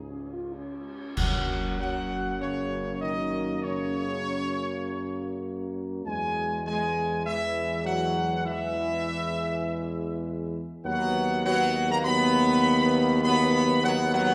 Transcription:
Already playing: tuba C#2, trombone section G#2, trumpet section G#4
0.10 french horn section C#4
0.32 french horn section F4
0.53 french horn section C#4
1.16 tuba F#2, trombone section F#3 A#3, french horn section F#3, trumpet section F#5, concert bass drum, crash
1.79 french horn section F#3, trumpet section F#5
2.40 french horn section C#3, trumpet section C#5
3.01 french horn section D#3, trumpet section D#5
3.62 french horn section C#3, trumpet section C#5
6.05 tuba E2, french horn section G#3, trombone section G#3, trumpet section G#5
6.65 trombone section E3, french horn section G#3, trumpet section G#5
7.25 french horn section E3, trumpet section E5
7.85 french horn section F#3, trumpet section F#5
8.45 french horn section E3, trumpet section E5
10.85 tuba D#2, french horn section F#3, trombone section F#3 B3, trumpet section F#5
11.45 trombone section F#3 B3, french horn section F#3, trumpet section F#5
11.90 french horn section A#3, trumpet section A#5
12.04 trombone section F#3 B3, french horn section B3, trumpet section B5
13.23 trombone section F#3 B3, french horn section B3, trumpet section B5
13.83 french horn section F#3, trombone section F#3 B3, trumpet section F#5
14.13 french horn section F#3, trumpet section F#5

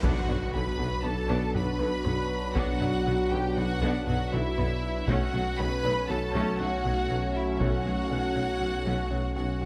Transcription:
0.03 tuba B1, detuned saw bass B1, double bass section B1, trombone section B2 F#3, cello section B2, analog synth pad F#3 D4 F#4 B4, viola section B3 D4, synth pluck B3, french horn section D4 F#4, violin section F#4 F#5, taiko, impact
0.28 tuba B1, double bass section B1, cello section B2, viola section F#3 B3, synth pluck D4, taiko low-mid
0.53 double bass section B1, tuba B1, cello section B2, viola section D3 F#3, synth pluck F#4, violin section B4 B5
0.78 double bass section B1, tuba B1, cello section B2, viola section F#3 B3, synth pluck F#4
1.03 tuba B1, double bass section B1, cello section B2, viola section B3 D4, violin section A4 A5, synth pluck B4
1.29 double bass section B1, tuba B1, cello section B2, viola section B3 D4, synth pluck B3
1.54 double bass section B1, tuba B1, cello section B2, viola section F#3 B3, synth pluck F#4, violin section B4 B5, taiko low-mid
1.79 tuba B1, double bass section B1, cello section B2, viola section D3 F#3, synth pluck B4
2.04 tuba B1, double bass section B1, cello section B2, viola section F#3 B3, synth pluck B4, taiko low-mid
2.55 tuba B1, double bass section B1, cello section B2, synth pluck B3, viola section B3 D4, violin section F#4 F#5, taiko
2.81 tuba B1, double bass section B1, cello section B2, viola section F#3 B3, synth pluck D4, taiko low-mid
3.06 tuba B1, double bass section B1, cello section B2, viola section D3 F#3, synth pluck F#4
3.30 tuba B1, double bass section B1, cello section B2, viola section F#3 B3, synth pluck F#4, violin section G4 G5
3.56 tuba B1, double bass section B1, cello section B2, viola section B3 D4, violin section F#4 F#5, synth pluck B4
3.82 double bass section B1, tuba B1, cello section B2, synth pluck B3, viola section B3 D4
4.06 tuba B1, double bass section B1, cello section B2, viola section F#3 B3, synth pluck F#4, violin section F#4 F#5, taiko low-mid
4.31 tuba B1, double bass section B1, cello section B2, viola section D3 F#3, violin section E4 E5, synth pluck B4
4.58 double bass section B1, tuba B1, cello section B2, viola section F#3 B3, synth pluck B4, taiko low-mid
5.07 double bass section B1, detuned saw bass B1, tuba B1, trombone section A2 F#3, cello section B2, synth pluck F#3, analog synth pad A3 C#4 F#4 C#5, viola section A3 C#4, french horn section C#4 F#4, violin section F#4 F#5, taiko
5.33 double bass section B1, tuba B1, cello section B2, viola section F#3 A3, synth pluck A3
5.58 double bass section B1, tuba B1, cello section B2, viola section C#3 F#3, synth pluck C#4, violin section B4 B5
5.84 tuba B1, double bass section B1, cello section B2, viola section F#3 A3, synth pluck C#4
6.09 tuba B1, double bass section B1, cello section B2, viola section A3 C#4, synth pluck F#4, violin section A4 A5
6.34 tuba B1, double bass section B1, cello section B2, synth pluck F#3, viola section A3 C#4
6.58 tuba B1, double bass section B1, cello section B2, viola section F#3 A3, synth pluck C#4, violin section F#4 F#5
6.84 tuba B1, double bass section B1, cello section B2, viola section C#3 F#3, synth pluck F#4
7.09 double bass section B1, tuba B1, cello section B2, viola section F#3 A3, synth pluck F#4
7.34 violin section E4 E5
7.59 double bass section B1, tuba B1, cello section B2, synth pluck F#3, viola section A3 C#4, violin section F#4 F#5, taiko
7.84 double bass section B1, tuba B1, cello section B2, viola section F#3 A3, synth pluck A3
8.10 tuba B1, double bass section B1, cello section B2, viola section C#3 F#3, synth pluck C#4
8.36 tuba B1, double bass section B1, cello section B2, viola section F#3 A3, synth pluck C#4
8.61 tuba B1, double bass section B1, cello section B2, viola section A3 C#4, synth pluck F#4
8.85 tuba B1, double bass section B1, cello section B2, synth pluck F#3, viola section A3 C#4
9.11 double bass section B1, tuba B1, cello section B2, viola section F#3 A3, synth pluck C#4
9.35 tuba B1, double bass section B1, cello section B2, viola section C#3 F#3, violin section F#4 F#5, synth pluck F#4
9.61 tuba B1, double bass section B1, cello section B2, viola section F#3 A3, synth pluck F#4

